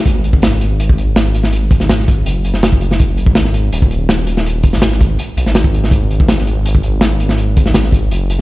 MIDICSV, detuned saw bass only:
0, 0, Header, 1, 2, 480
1, 0, Start_track
1, 0, Tempo, 365854
1, 84, Time_signature, 4, 2, 24, 8
1, 11034, End_track
2, 0, Start_track
2, 0, Title_t, "Detuned saw bass"
2, 0, Program_c, 0, 39
2, 74, Note_on_c, 0, 32, 99
2, 2342, Note_off_c, 0, 32, 0
2, 2364, Note_on_c, 0, 32, 99
2, 2944, Note_off_c, 0, 32, 0
2, 2959, Note_on_c, 0, 30, 101
2, 4283, Note_on_c, 0, 32, 98
2, 4302, Note_off_c, 0, 30, 0
2, 4863, Note_off_c, 0, 32, 0
2, 4884, Note_on_c, 0, 27, 90
2, 6208, Note_on_c, 0, 32, 93
2, 6228, Note_off_c, 0, 27, 0
2, 6786, Note_off_c, 0, 32, 0
2, 7045, Note_on_c, 0, 35, 90
2, 7155, Note_off_c, 0, 35, 0
2, 7167, Note_on_c, 0, 32, 83
2, 7746, Note_off_c, 0, 32, 0
2, 7756, Note_on_c, 0, 32, 96
2, 10023, Note_off_c, 0, 32, 0
2, 10046, Note_on_c, 0, 32, 97
2, 10625, Note_off_c, 0, 32, 0
2, 10643, Note_on_c, 0, 30, 98
2, 11034, Note_off_c, 0, 30, 0
2, 11034, End_track
0, 0, End_of_file